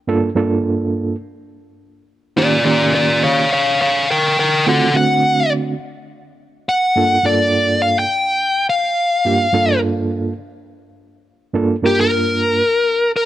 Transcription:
0.07 reed electric piano G2 A#3 D4 F4 A4
0.35 reed electric piano G2 A#3 D4 F4 A4
2.37 reed electric piano D#3 A#3 C#4 F4 G4, lead electric guitar F4 D5
2.64 reed electric piano D#3 A#3 C#4 F4 G4, lead electric guitar F4 D5
2.95 lead electric guitar F4 D5
3.23 lead electric guitar C#5 F5
3.52 lead electric guitar C#5 F5
3.81 lead electric guitar C#5 F5
4.11 lead electric guitar A#4 G5
4.39 lead electric guitar A#4 G5
4.66 reed electric piano D3 A3 C4 F4 F#4, lead electric guitar A4 F#5
4.94 reed electric piano D3 A3 C4 D4 F#4, lead electric guitar F#5
6.69 lead electric guitar F#5
6.96 reed electric piano G2 A#3 D4 F4 A4
7.24 reed electric piano G2 A#3 D4 F4 A4, lead electric guitar D5
7.82 lead electric guitar F5
7.99 lead electric guitar G5
8.70 lead electric guitar F5
9.25 reed electric piano G2 A#3 D4 F4 G4
9.53 reed electric piano G2 A#3 D4 F4 A4
11.54 reed electric piano G2 A#3 D4 F4 A4
11.83 reed electric piano G2 A#3 D4 F4 A#4, lead electric guitar G4
12.01 lead electric guitar A#4
13.16 lead electric guitar A#4

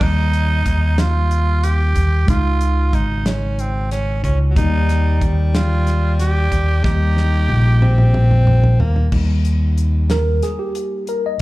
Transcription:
0.00 fingered electric bass D#2, tine electric piano G3 A#3 D#4, tenor saxophone D#4, kick, crash
0.33 closed hi-hat
0.66 fingered electric bass D#2, kick, closed hi-hat
0.98 tenor saxophone F4, snare, closed hi-hat
1.31 closed hi-hat
1.64 tenor saxophone G4, closed hi-hat
1.95 fingered electric bass D#2, kick, closed hi-hat
2.27 fingered electric bass C#2, tine electric piano C#3 G#3 D#4, tenor saxophone F4, kick, closed hi-hat
2.61 closed hi-hat
2.93 fingered electric bass G#1, tenor saxophone D#4, kick, closed hi-hat
3.26 tenor saxophone C#4, snare, closed hi-hat
3.59 tenor saxophone C4, closed hi-hat
3.91 tenor saxophone C#4, snare, closed hi-hat
4.24 fingered electric bass C#2, tenor saxophone C#4, kick, closed hi-hat
4.50 alto saxophone F#3
4.55 fingered electric bass D#2, tine electric piano G3 A#3 D#4, alto saxophone G3, tenor saxophone D#4, kick, closed hi-hat
4.89 snare, closed hi-hat
5.21 fingered electric bass D#2, kick, closed hi-hat
5.55 tenor saxophone F4, snare, closed hi-hat
5.87 snare, closed hi-hat
6.20 tenor saxophone G4, snare, closed hi-hat
6.52 fingered electric bass D#2, kick, closed hi-hat
6.83 fingered electric bass D#2, tine electric piano G3 A#3 D#4, alto saxophone D#4, tenor saxophone G4, kick, snare
7.17 snare
7.49 fingered electric bass A#1, high tom
7.82 alto saxophone C4, mid tom
7.98 mid tom
8.14 mid tom
8.31 mid tom
8.47 mid tom
8.64 floor tom
8.80 fingered electric bass D#2, alto saxophone A#3, floor tom
8.96 floor tom
9.12 fingered electric bass D#2, tine electric piano G3 A#3 D#4, kick, crash
9.45 closed hi-hat
9.78 closed hi-hat
10.10 tine electric piano A#4, snare, closed hi-hat
10.43 tine electric piano G#4, snare, closed hi-hat
10.59 tine electric piano G4
10.75 closed hi-hat
11.07 tine electric piano A#4, closed hi-hat
11.26 tine electric piano D#5

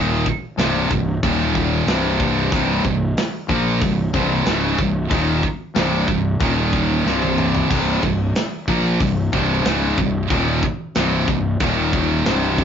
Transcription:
Already playing: fingered electric bass D#1, distorted electric guitar D#2 A#2 D#3
0.26 kick
0.58 fingered electric bass C1, distorted electric guitar C2 G2 C3, snare, open hi-hat
0.91 fingered electric bass C1, distorted electric guitar C2 G2, kick
1.23 fingered electric bass D#1, distorted electric guitar D#2 A#2 D#3, kick, open hi-hat
1.55 kick
1.87 fingered electric bass C1, distorted electric guitar C2 G2 C3, snare, open hi-hat
2.20 kick
2.52 fingered electric bass C1, distorted electric guitar C2 G2 C3, kick, open hi-hat
2.85 fingered electric bass C1, distorted electric guitar C2 G2, kick
3.17 snare, open hi-hat
3.48 fingered electric bass A#1, distorted electric guitar A#2 F3 A#3, kick
3.81 fingered electric bass C1, distorted electric guitar C2 G2, kick, open hi-hat
4.13 fingered electric bass C1, distorted electric guitar C2 G2 C3, kick
4.45 fingered electric bass C#1, distorted electric guitar C#2 G#2 C#3, snare, open hi-hat
4.79 fingered electric bass C1, distorted electric guitar C2 G2, kick
5.10 fingered electric bass D#1, distorted electric guitar D#2 A#2 D#3, kick, open hi-hat
5.43 kick
5.75 fingered electric bass C1, distorted electric guitar C2 G2 C3, snare, open hi-hat
6.08 fingered electric bass C1, distorted electric guitar C2 G2, kick
6.39 fingered electric bass D#1, distorted electric guitar D#2 A#2 D#3, kick, open hi-hat
6.73 kick
7.05 fingered electric bass C1, distorted electric guitar C2 G2 C3, snare
7.22 high tom
7.38 mid tom
7.55 floor tom
7.70 fingered electric bass C1, distorted electric guitar C2 G2 C3, kick, crash
8.03 fingered electric bass C1, distorted electric guitar C2 G2, kick
8.35 snare, open hi-hat
8.68 fingered electric bass A#1, distorted electric guitar A#2 F3 A#3, kick
9.00 fingered electric bass C1, distorted electric guitar C2 G2, kick, open hi-hat
9.32 fingered electric bass C1, distorted electric guitar C2 G2 C3, kick
9.65 fingered electric bass C#1, distorted electric guitar C#2 G#2 C#3, snare, open hi-hat
9.98 fingered electric bass C1, distorted electric guitar C2 G2, kick
10.30 fingered electric bass D#1, distorted electric guitar D#2 A#2 D#3, kick, open hi-hat
10.63 kick
10.95 fingered electric bass C1, distorted electric guitar C2 G2 C3, snare, open hi-hat
11.28 fingered electric bass C1, distorted electric guitar C2 G2, kick
11.60 fingered electric bass D#1, distorted electric guitar D#2 A#2 D#3, kick, open hi-hat
11.93 kick
12.26 fingered electric bass C1, distorted electric guitar C2 G2 C3, snare, open hi-hat
12.58 kick

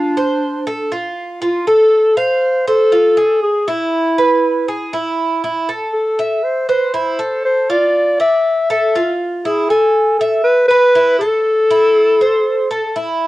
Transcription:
Already playing: clarinet D4, cuban tres F4
0.17 cuban tres C5
0.67 cuban tres A4
0.92 cuban tres F4
1.42 cuban tres F4, clarinet F4
1.67 cuban tres A4, clarinet A4
2.17 clarinet C5, cuban tres F5
2.67 clarinet A4, cuban tres C5
2.92 cuban tres F4
3.17 cuban tres G#4
3.43 clarinet G#4
3.68 cuban tres E4, clarinet E4
4.18 cuban tres B4
4.68 cuban tres G#4
4.93 cuban tres E4
5.44 cuban tres E4
5.69 cuban tres A4
5.93 clarinet A4
6.19 cuban tres E5
6.44 clarinet C5
6.69 clarinet B4, cuban tres C5
6.94 cuban tres E4, clarinet C5
7.19 cuban tres A4
7.45 clarinet C5
7.70 cuban tres F4, clarinet D5
8.20 cuban tres D5, clarinet E5
8.70 cuban tres A4, clarinet E5
8.95 cuban tres F4
9.45 cuban tres E4, clarinet G#4
9.70 clarinet A4, cuban tres G#5
10.19 clarinet A4, cuban tres E5
10.44 clarinet B4
10.68 clarinet B4, cuban tres B4
10.95 cuban tres E4
11.19 clarinet A4, cuban tres A4
11.71 cuban tres E4
12.21 cuban tres C5
12.71 cuban tres A4
12.96 cuban tres E4

